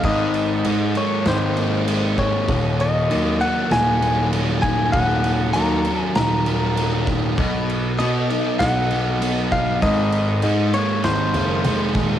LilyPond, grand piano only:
\new Staff \with { instrumentName = "Grand piano" } { \clef bass \time 4/4 \key ees \minor \tempo 4 = 98 aes,,4 aes,8 r8 aes,,2 | ees,,4 ees,8 r8 ees,,2 | ees,,4 ees,8 r8 ees,,2 | b,,4 b,8 r8 b,,2 |
aes,,4 aes,8 r8 aes,,8 ges,,8 f,,8 ees,,8 | }